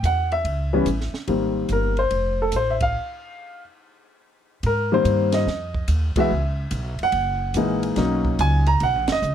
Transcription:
0.03 0.44 E2 medium
0.03 0.30 F#5 medium
0.03 kick soft
0.03 hi-hat pedal medium
0.03 ride medium
0.32 1.11 E5 medium
0.32 ride soft
0.45 0.85 C#2 medium
0.45 kick soft
0.45 ride medium
0.73 0.86 E3 medium
0.73 0.86 G3 medium
0.73 0.86 B3 medium
0.73 0.86 C#4 medium
0.86 1.12 A1 medium
0.86 kick soft
0.86 hi-hat pedal medium
0.86 ride medium
1.01 snare soft
1.13 muted upright bass stroke soft
1.13 snare soft
1.27 1.69 G#1 medium
1.27 1.92 D#3 soft
1.27 1.92 G3 soft
1.27 1.92 A#3 soft
1.27 1.92 C4 soft
1.27 kick soft
1.27 ride medium
1.69 2.10 G1 medium
1.69 2.00 A#4 medium
1.69 kick soft
1.69 hi-hat pedal soft
1.69 ride medium
1.97 2.42 C5 medium
1.97 ride soft
2.11 2.52 F1 medium
2.11 kick soft
2.11 ride medium
2.42 2.55 A4 medium
2.52 2.94 A1 medium
2.52 kick soft
2.52 hi-hat pedal medium
2.52 ride medium
2.56 2.74 C5 medium
2.70 2.81 E5 medium
2.80 3.62 F5 medium
2.80 kick medium
2.80 ride medium
4.63 5.04 G#2 medium
4.63 4.93 A#4 medium
4.63 kick soft
4.63 ride medium
4.92 5.44 D#3 medium
4.92 5.44 G3 medium
4.92 5.44 A#3 medium
4.92 5.45 C4 medium
4.92 5.35 C5 medium
5.05 5.45 G2 medium
5.05 kick soft
5.05 hi-hat pedal medium
5.05 ride medium
5.32 5.85 D#5 medium
5.32 snare soft
5.32 ride medium
5.47 kick soft
5.47 snare soft
5.75 kick medium
5.88 6.14 D#2 medium
5.88 kick soft
5.88 hi-hat pedal medium
5.88 ride medium
6.16 6.29 E3 medium
6.16 6.29 G#3 medium
6.16 6.29 B3 medium
6.16 6.30 F#4 medium
6.16 muted upright bass stroke soft
6.16 kick medium
6.16 ride medium
6.20 6.98 E5 medium
6.31 6.70 C#2 medium
6.71 6.97 B1 medium
6.71 kick soft
6.71 hi-hat pedal medium
6.71 ride medium
6.99 muted upright bass stroke soft
6.99 ride soft
7.03 7.81 F#5 loud
7.12 7.54 F#1 medium
7.12 kick soft
7.12 ride medium
7.54 7.96 A#1 medium
7.54 7.98 E3 medium
7.54 7.98 G#3 medium
7.54 7.96 A#3 medium
7.54 7.96 D#4 medium
7.54 kick soft
7.54 hi-hat pedal medium
7.54 ride medium
7.83 ride soft
7.96 8.38 B1 medium
7.96 8.61 F#3 medium
7.96 8.61 A#3 soft
7.96 8.62 C#4 soft
7.96 8.62 D#4 medium
7.96 kick soft
7.96 snare soft
7.96 ride medium
8.25 kick medium
8.39 8.80 C#2 medium
8.39 8.69 G#5 medium
8.39 kick soft
8.39 hi-hat pedal soft
8.39 ride medium
8.66 8.82 A#5 medium
8.66 ride soft
8.80 8.95 B1 medium
8.80 9.08 F#5 medium
8.80 kick soft
8.80 ride medium
8.95 9.07 A#1 medium
9.08 9.21 F#1 medium
9.08 snare medium
9.08 ride medium
9.12 9.35 D#5 loud
9.22 9.35 C#2 medium
9.22 hi-hat pedal medium

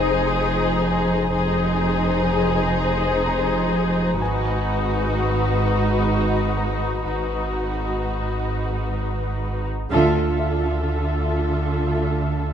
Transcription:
0.00 1.30 F1 medium
0.00 1.33 F1 medium
0.00 1.31 F2 medium
0.00 1.32 D#4 soft
0.00 1.31 G#4 soft
0.00 1.31 G#4 medium
0.00 1.30 C5 medium
0.00 1.31 G5 soft
0.87 3.69 G#5 soft
1.33 4.21 F1 medium
1.33 4.16 F1 medium
1.33 4.16 F2 medium
1.33 4.16 D#4 soft
1.33 4.16 G#4 medium
1.33 4.15 C5 medium
3.26 6.07 A#5 medium
4.19 7.05 G#1 medium
4.19 7.04 G#1 medium
4.19 7.05 G#2 medium
4.19 7.03 D#4 soft
4.19 7.02 F#4 medium
4.19 7.02 B4 soft
4.19 7.03 G#5 soft
6.57 9.39 A#5 soft
7.05 9.87 G#1 medium
7.05 9.67 G#1 soft
7.05 9.68 G#2 soft
7.05 9.68 D#4 soft
7.05 9.68 F#4 soft
7.05 9.68 B4 soft
9.90 12.53 D2 medium
9.90 12.53 D3 medium
9.90 12.53 F4 soft
9.90 12.53 A4 medium
9.90 12.53 E5 medium
10.39 12.53 F4 soft
10.39 12.53 E5 soft

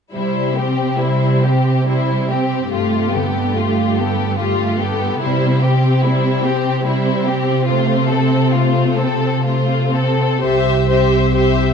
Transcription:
0.13 2.69 C3 soft
0.13 2.77 C3 soft
0.13 0.55 G3 soft
0.13 0.55 E4 soft
0.13 0.54 C5 soft
0.56 4.48 G3 soft
0.56 1.01 C4 soft
0.56 1.00 G4 soft
0.98 1.44 G3 soft
0.98 1.43 E4 soft
0.98 1.86 E4 soft
0.98 1.44 C5 soft
1.43 1.88 C4 soft
1.43 5.33 G4 soft
1.43 1.88 G4 soft
1.87 2.28 G3 soft
1.87 2.77 E4 soft
1.87 2.29 E4 soft
1.87 2.28 C5 soft
2.30 2.76 C4 soft
2.30 2.73 C4 soft
2.30 2.73 G4 soft
2.30 2.70 G4 soft
2.71 5.20 G2 soft
2.71 5.28 G2 soft
2.71 3.11 A3 soft
2.71 3.12 F4 soft
2.71 3.11 G4 soft
3.13 5.28 D3 soft
3.13 3.56 B3 soft
3.13 3.57 G4 soft
3.13 3.56 A4 soft
3.55 3.98 A3 soft
3.55 3.98 F4 soft
3.55 4.39 F4 soft
3.55 3.99 G4 soft
3.97 4.41 B3 soft
3.97 4.41 G4 soft
3.97 4.40 A4 soft
3.97 5.28 A4 soft
4.38 4.79 F4 soft
4.38 5.27 F4 soft
4.38 4.78 G4 soft
4.42 4.81 A3 soft
4.80 5.24 B3 soft
4.80 5.28 B3 soft
4.80 5.23 G4 soft
4.80 5.24 A4 soft
5.20 10.17 C3 soft
5.20 5.60 E4 soft
5.20 5.61 C5 soft
5.25 7.68 C3 soft
5.25 5.63 G3 soft
5.61 7.73 G3 soft
5.61 6.04 G4 soft
5.67 6.06 C4 soft
6.02 6.44 E4 soft
6.02 6.85 E4 soft
6.02 6.45 C5 soft
6.08 6.47 G3 soft
6.43 6.86 C4 soft
6.43 6.85 G4 soft
6.43 7.73 G4 soft
6.86 7.25 G3 soft
6.86 7.25 E4 soft
6.86 7.73 E4 soft
6.86 7.25 C5 soft
7.26 9.93 C4 soft
7.26 7.70 C4 soft
7.26 7.69 G4 soft
7.66 10.42 C3 soft
7.66 8.07 F4 soft
7.66 8.09 C5 soft
7.71 8.10 A3 soft
8.08 8.53 A4 soft
8.12 10.48 A3 soft
8.12 8.57 C4 soft
8.12 8.56 A4 soft
8.52 8.98 F4 soft
8.52 9.44 F4 soft
8.56 9.00 A3 soft
8.56 9.01 C5 soft
8.96 9.44 A4 soft
9.00 9.47 C4 soft
9.00 10.48 A4 soft
9.00 9.47 A4 soft
9.45 9.91 A3 soft
9.45 9.92 F4 soft
9.45 10.47 F4 soft
9.45 9.93 C5 soft
9.93 10.43 C4 soft
9.93 10.90 C4 soft
9.93 10.43 A4 soft
9.98 10.45 A4 soft
10.42 11.65 C2 soft
10.42 11.73 C3 soft
10.42 10.89 G4 soft
10.42 10.87 C5 soft
10.42 10.90 E5 soft
10.88 11.73 C4 soft
10.88 11.34 G4 soft
10.88 11.33 C5 soft
10.88 11.36 E5 soft
11.34 11.73 E4 soft
11.34 11.73 G4 soft
11.34 11.73 C5 soft
11.34 11.73 E5 soft

